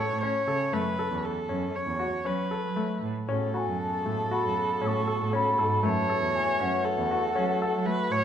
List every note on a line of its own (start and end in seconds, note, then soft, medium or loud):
0.00 0.16 A4 medium
0.00 0.20 C#5 medium
0.10 0.40 A2 medium
0.21 0.41 C#4 medium
0.21 0.74 C#5 medium
0.48 0.58 C#3 medium
0.48 0.66 A4 medium
0.73 0.93 F#2 medium
0.73 0.92 A3 medium
0.73 1.26 B4 medium
0.99 1.36 A4 medium
1.11 1.31 E2 medium
1.25 1.77 A4 medium
1.49 1.69 F#2 medium
1.49 1.87 C#4 medium
1.75 2.28 C#5 medium
1.87 2.07 E2 medium
1.99 2.18 F#4 medium
2.25 2.45 F#3 medium
2.25 2.44 C#4 medium
2.25 3.03 B4 medium
2.51 2.70 A4 medium
2.64 2.94 F#3 medium
2.76 3.15 A3 medium
3.02 3.13 A2 medium
3.28 3.49 A2 medium
3.28 5.82 C#3 medium
3.28 5.82 B3 medium
3.28 3.48 C#4 medium
3.28 8.24 F#4 medium
3.28 5.86 A4 medium
3.54 3.92 F#4 medium
3.54 3.78 G#5 medium
3.54 3.58 B5 medium
3.67 3.87 F#2 medium
3.81 4.28 A5 medium
4.05 4.26 A2 medium
4.05 4.24 A3 medium
4.31 4.69 F#4 medium
4.31 4.79 B5 medium
4.43 4.64 F#2 medium
4.81 5.02 A2 medium
4.81 5.01 C#4 medium
4.81 4.89 E6 medium
4.88 5.31 C#6 loud
5.07 5.26 A4 medium
5.20 5.50 A2 medium
5.33 5.52 C#4 medium
5.33 5.85 B5 medium
5.58 5.68 G#2 medium
5.58 5.77 A4 medium
5.82 6.03 F#2 medium
5.82 8.24 E3 medium
5.82 8.24 A3 medium
5.82 6.02 A3 medium
5.82 6.86 C#5 medium
5.82 5.90 B5 medium
5.89 6.37 A5 medium
6.09 6.47 A4 medium
6.21 6.42 E2 medium
6.36 6.60 G#5 medium
6.60 6.80 F#2 medium
6.60 6.97 C#4 medium
6.60 8.08 F#5 medium
6.85 7.87 A4 medium
6.97 7.17 E2 medium
7.11 7.30 F#4 medium
7.35 7.55 F#3 medium
7.35 7.54 C#4 medium
7.62 7.80 A4 medium
7.73 8.03 F#3 medium
7.86 8.23 A3 medium
7.86 8.13 B4 medium
8.11 8.21 A2 medium
8.11 8.24 C#5 medium